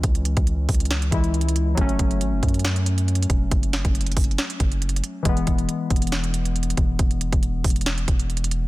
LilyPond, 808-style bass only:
\new Staff \with { instrumentName = "808-style bass" } { \clef bass \time 4/4 \key fis \dorian \tempo 4 = 138 cis,8. cis,8. cis,4 cis,4. | fis,,8 fis,,8 gis,,16 fis,,16 fis,2 e,,8 | fis,,8. fis,,8. fis,,8 r8 fis,,4 r8 | e,,8 e,,8 r8 e,,2 e,,8 |
e,,8. e,,8. e,,4 e,,4. | }